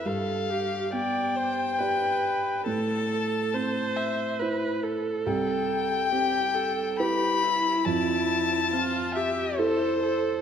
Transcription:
<<
  \new Staff \with { instrumentName = "Violin" } { \time 3/4 \key c \major \tempo 4 = 69 f''4 g''2 | a''4. e''8 r4 | g''2 b''4 | a''4. e''8 c''4 | }
  \new Staff \with { instrumentName = "Viola" } { \time 3/4 \key c \major a'8 g'8 d''8 c''8 b'4 | a'4 c''4 b'8 a'8~ | a'4 g'8 a'8 g'8 e'8~ | e'4 f'8 g'8 a'8 a'8 | }
  \new Staff \with { instrumentName = "Felt piano" } { \time 3/4 \key c \major g,4 b4 <g' d''>4 | a,4 c'4 <e' c''>4 | c,4 c'4 <e' b'>4 | f,4 c'4 <e' a'>4 | }
>>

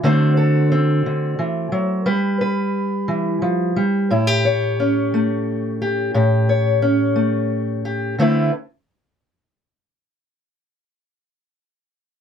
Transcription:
\new Staff \with { instrumentName = "Steel-string acoustic guitar" } { \time 12/8 \key a \dorian \tempo 4. = 59 << { <a c' fis' c''>8 a'8 c'2 b'8 b'2~ b'8 | e'16 g'16 cis''8 cis'4. g'8 g'8 cis''8 cis'4. g'8 | <a c' e' b'>8 r1 r4. | } \\ { d4. d8 e8 fis8 g4. e8 f8 g8 | a,4. a4. a,4. a4. | d8 r1 r4. | } >> }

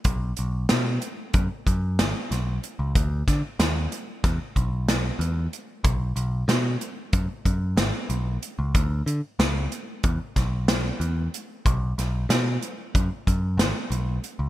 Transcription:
<<
  \new Staff \with { instrumentName = "Picked electric bass" } { \clef bass \time 9/8 \key b \dorian \tempo 4. = 62 b,,8 b,,8 b,8 r8 fis,16 r16 fis,8 gis,,16 r16 b,,8 r16 cis,16 | d,8 d16 r16 ees,8 r8 e,16 r16 b,,4 e,8 r8 | b,,8 b,,8 b,8 r8 fis,16 r16 fis,8 gis,,16 r16 b,,8 r16 cis,16 | d,8 d16 r16 cis,8 r8 e,16 r16 b,,4 e,8 r8 |
b,,8 b,,8 b,8 r8 fis,16 r16 fis,8 gis,,16 r16 b,,8 r16 cis,16 | }
  \new DrumStaff \with { instrumentName = "Drums" } \drummode { \time 9/8 <hh bd>8 hh8 <hh sn>8 hh8 <hh bd>8 <hh bd>8 <hh sn>8 <hh sn>8 hh8 | <hh bd>8 <hh bd sn>8 <hh sn>8 hh8 <hh bd sn>8 <hh bd>8 <hh sn>8 hh8 hh8 | <hh bd>8 hh8 <hh sn>8 hh8 <hh bd>8 <hh bd>8 <hh sn>8 hh8 hh8 | <hh bd>8 hh8 <hh sn>8 hh8 <hh bd>8 <hh bd sn>8 <hh sn>8 hh8 hh8 |
<hh bd>8 <hh sn>8 <hh sn>8 hh8 <hh bd>8 <hh bd>8 <hh sn>8 hh8 hh8 | }
>>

